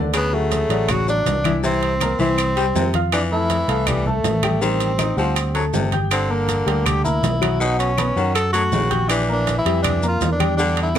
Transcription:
Already playing: D2 D3 D4 D5
0.14 C#3 B3, high conga, high timbale, claves, maracas
0.33 F#3 A3 F#4 F#5, high conga
0.51 high conga, high timbale, low timbale, maracas
0.69 A1 F#3 F#4 D5, high timbale, maracas
0.88 F#4, high conga, low conga, high timbale, claves, maracas
1.08 F#3 D4 F#4 F#5, high conga, maracas
1.26 C2, high conga, high timbale, low timbale, maracas
1.44 E3 E4 E5, high conga, high timbale, claves, maracas
1.63 C3 E3 C4 E4 E5, high conga, maracas
1.83 high conga, high timbale
2.01 A#3 A#4 A#5, high conga, high timbale, low timbale, claves, maracas
2.19 C2 E3 C4 E4 E5, maracas
2.38 high conga, high timbale, claves, maracas
2.56 G3 G4 G5, high conga, high timbale
2.75 F2 C3, high conga, low timbale, maracas
2.94 F4 F5 F6, high conga, high timbale, maracas
3.12 E3 D4, high timbale, claves, maracas
3.31 A3 E4 A4 A5, high conga
3.50 high conga, high timbale, low timbale, maracas
3.68 C2 A3 A4 F5, high timbale, maracas
3.87 G3, high conga, low conga, high timbale, claves, maracas
4.06 A3 A4 A5, high conga, low conga
4.24 A1, high conga, high timbale, low timbale, maracas
4.43 G3 G4 G5, high conga, high timbale, claves, maracas
4.61 D#3 G3 C4 G4 G5, high conga, maracas
4.80 high conga, high timbale, maracas
4.99 D#4 D#5 D#6, high conga, high timbale, low timbale, claves, maracas
5.17 D2 F3 G3 C4 G4 F#5, maracas
5.36 high conga, high timbale, claves, maracas
5.54 F#3 A3 A4 A5, high conga, high timbale
5.73 G1 C3, high conga, low timbale, maracas
5.92 G4 G5 G6, high conga, high timbale, maracas
6.11 D3 C4, high timbale, claves, maracas
6.30 A#3 A#4 A#5, high conga
6.48 high conga, high timbale, low timbale, maracas
6.66 D2 G3 G4 G5, high timbale, maracas
6.86 G4, high conga, low conga, high timbale, claves, maracas
7.04 A#3 E4 A#4 A#5, high conga, low conga, maracas
7.23 B1, high conga, high timbale, low timbale, maracas
7.41 F#3 F#4 F#5, high conga, high timbale, claves, maracas
7.60 B2 F#3 D#4 F#4 F#5, maracas
7.79 C#4, high conga, high timbale, maracas
7.98 B3 B4 B5, high conga, high timbale, low timbale, claves, maracas
8.16 F#2 D#3 F#3 F#4 F#5, maracas
8.35 A4, high conga, high timbale, claves, maracas
8.53 F#3 A3 F#4 A4 A5, high conga, high timbale, maracas
8.72 A#1 C#3, high conga, low timbale, maracas
8.90 G4 G5 G6, high conga, high timbale, maracas
9.08 E3 D4, high conga, high timbale, claves, maracas
9.29 A#3 D4 A#4 A#5, high conga
9.47 high conga, high timbale, low timbale, maracas
9.58 E4
9.65 F2 G3 G4 G5, high timbale, maracas
9.83 D4, high conga, low conga, high timbale, claves, maracas
10.03 A#3 A#4 A#5, high conga, maracas
10.08 F4
10.21 E2, high conga, high timbale, low timbale, maracas
10.32 D4
10.40 G3 G4 G5, high conga, high timbale, claves, maracas
10.57 D3 G3 D4 G4 G5, high conga, maracas
10.77 high timbale
10.83 E4
10.95 D4, high conga, claves

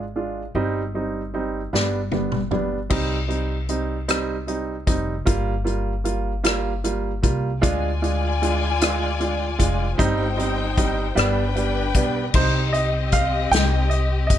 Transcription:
Already playing: G#1
0.16 G#3 D4 F4
0.55 G1 G3 C4 D#4
0.95 G3 C4 D#4
1.34 G3 C4 D#4
1.73 G1 G3 B3 D4, snare
2.12 G3 B3 D4, high tom
2.32 mid tom
2.51 G3 B3 D4, mid tom
2.90 C2 G3 C4 D#4, kick, crash
3.28 G3 C4 D#4, closed hi-hat
3.69 G3 C4 D#4, closed hi-hat
4.08 G3 C4 D#4, cross-stick, closed hi-hat
4.47 G3 C4 D#4, closed hi-hat
4.87 F1 G3 C4 D#4, kick, closed hi-hat
5.25 G1 G3 A#3 F4, kick, closed hi-hat
5.64 G3 A#3 F4, closed hi-hat
6.04 G3 A#3 F4, closed hi-hat
6.44 G3 A#3 F4, cross-stick, closed hi-hat
6.84 G3 A#3 F4, closed hi-hat
7.22 C2 G3 A#3 F4, kick, closed hi-hat
7.61 D2 G#3 D4 F4 D5 G#5, kick, closed hi-hat
8.02 G#3 D4 F4, closed hi-hat
8.42 G#3 D4 F4, closed hi-hat
8.81 G#3 D4 F4, cross-stick, closed hi-hat
9.20 G#3 D4 F4, closed hi-hat
9.58 F1 G#3 D4 F4, kick, closed hi-hat
9.98 G1 G3 C4 D#4 C5 G5, kick, closed hi-hat
10.37 G3 C4 D#4, closed hi-hat
10.77 G3 C4 D#4, kick, closed hi-hat
11.15 G1 G3 B3 D4 B4 G5, cross-stick, closed hi-hat
11.56 G3 B3 D4, closed hi-hat
11.94 B1 G3 B3 D4, kick, closed hi-hat
12.34 C2 G3 C4 D#4 G4 C5 D#5, kick, crash
12.73 D#5, closed hi-hat
13.12 F5, kick, closed hi-hat
13.51 C2 G3 C4 D#4 G5, snare, closed hi-hat
13.89 D#5, closed hi-hat
14.27 F1 D#5, kick, closed hi-hat

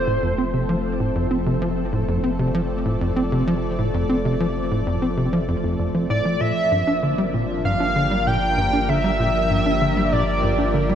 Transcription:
Already playing: F1 F3 A3 C4 A4 C5
0.07 A2
0.22 F2
0.38 C4
0.53 C3
0.69 F3
1.00 A2
1.15 F2
1.31 C4
1.46 C3
1.62 F3
1.93 A2
2.08 F2
2.24 C4 D5
2.39 C3
2.54 F3
2.85 A2
3.01 F2
3.16 C4
3.32 C3
3.47 F3
3.78 A2
3.94 F2
4.09 C4
4.25 C3
4.40 F3
4.71 A2
4.86 F2
5.02 C4
5.17 C3
5.33 F3
5.48 F2
5.64 F2
5.79 F2
5.94 F3
6.10 A2 D5
6.25 F3
6.40 G1 A#2 F3 E5
6.64 A#3
6.72 G2
6.87 D4
7.03 D3
7.14 G3 D4
7.34 A#2
7.53 G4
7.65 G2 F5
7.80 D4
7.90 A#4
7.96 D3
8.11 G3
8.27 A#2 G5
8.57 G2
8.73 D4
8.89 D3 E5
9.04 G3
9.20 A#2
9.50 G2
9.66 D4
9.81 D3
9.97 G3
10.12 A#2 D5
10.43 G2
10.58 D4
10.74 D3
10.89 G3

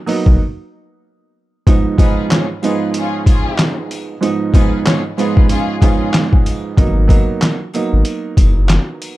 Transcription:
0.06 F#3 A#3 B3 D#4, open hi-hat, sleigh bells
0.26 B1, kick
1.67 G#2 F3 G#3 B3 D#4, kick, closed hi-hat, sleigh bells
1.97 G#2 F3 G#3 B3 D#4 F4 G#4 B4, kick, closed hi-hat, sleigh bells
2.31 F4 G#4 C#5, snare, clap, closed hi-hat, sleigh bells
2.62 G#2 F3 G#3 B3 D#4 F4 G#4 B4, closed hi-hat, sleigh bells
2.94 C#4 F4 G#4, closed hi-hat, sleigh bells
3.26 C#4 F4 G#4, kick, closed hi-hat, sleigh bells
3.58 snare, clap, closed hi-hat, sleigh bells
3.91 closed hi-hat, sleigh bells
4.21 G#2 F3 G#3 B3 D#4, closed hi-hat, sleigh bells
4.54 G#2 F3 G#3 B3 D#4 F4 G#4 B4, kick, snare, closed hi-hat, sleigh bells
4.86 F4 G#4 C#5, snare, clap, closed hi-hat, sleigh bells
5.18 G#2 F3 G#3 B3 D#4 F4 G#4 B4, closed hi-hat, sleigh bells
5.37 kick
5.49 C#4 F4 G#4, closed hi-hat, sleigh bells
5.81 G#2 F3 G#3 B3 C#4 D#4 F4 G#4, kick, closed hi-hat, sleigh bells
6.14 snare, clap, closed hi-hat, sleigh bells
6.33 kick
6.46 closed hi-hat, sleigh bells
6.77 G#1 F#3 A#3 B3 D#4, kick, closed hi-hat, sleigh bells
7.08 F#3 A#3 B3 D#4, kick, closed hi-hat, sleigh bells
7.41 snare, clap, closed hi-hat, sleigh bells
7.73 F#3 A#3 B3 D#4, closed hi-hat, sleigh bells
7.93 G#1
8.05 closed hi-hat, sleigh bells
8.37 F#1, kick, closed hi-hat, sleigh bells
8.69 snare, clap, closed hi-hat, sleigh bells
9.02 closed hi-hat, sleigh bells

